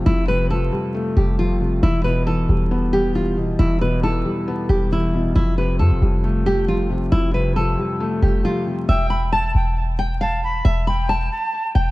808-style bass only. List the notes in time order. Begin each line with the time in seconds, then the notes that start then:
0.06 F1
1.17 F1
1.83 E1
2.49 E1
3.59 E1
4.70 E1
5.36 F1
5.80 F2
5.91 F1
6.02 F1
7.12 F1
8.22 F1
8.89 E1
9.55 E1
10.65 E1
11.76 E1